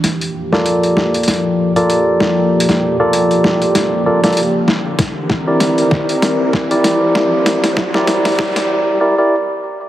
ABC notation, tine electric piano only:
X:1
M:4/4
L:1/16
Q:"Swing 16ths" 1/4=97
K:Gdor
V:1 name="Tine electric piano"
z3 [FABd]8 [FABd]4- [FABd]- | [FABd]3 [FABd]6- [FABd] [FABd] [FABd] z4 | z3 [EGBd]8 [EGBd]4- [EGBd]- | [EGBd]3 [EGBd]6- [EGBd] [EGBd] [EGBd] z4 |]